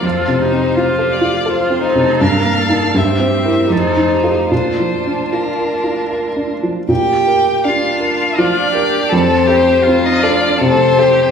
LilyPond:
<<
  \new Staff \with { instrumentName = "Violin" } { \time 3/4 \key bes \major \tempo 4 = 80 c''4. d''8 c''4 | f''4 e''4 c''4 | c''4 bes'4. r8 | g''4 f''4 d''4 |
c''4~ c''16 ees''16 d''8 c''4 | }
  \new Staff \with { instrumentName = "Cello" } { \time 3/4 \key bes \major a'8 g'4. f'8 a'8 | bes'8 a'8 g'4 a'8 g'8 | f'2~ f'8 r8 | g'4 f'4 d'4 |
c'4~ c'16 ees'16 d'8 c'4 | }
  \new Staff \with { instrumentName = "Violin" } { \time 3/4 \key bes \major f'8 ees'8 f'4 f'8 ees'8 | d'4 c'8 c'8 ees'4 | d'2~ d'8. r16 | r4 d'4 f'8 g'8 |
a'8 g'8 f'4 a'8 g'8 | }
  \new Staff \with { instrumentName = "Grand piano" } { \time 3/4 \key bes \major \tuplet 3/2 { f,8 c8 c'8 f'8 a'8 f'8 a'8 c'8 c8 } | \tuplet 3/2 { g,8 bes8 <ees' bes'>8 g,8 c'8 <e' bes'>8 f,8 ees'8 <f' a'>8 } | \tuplet 3/2 { bes,8 f8 d'8 f'8 bes'8 f'8 bes'8 d'8 f8 } | bes,8 bes'8 d'8 bes'8 f8 bes'8 |
f,8 a'8 c'8 a'8 c8 a'8 | }
>>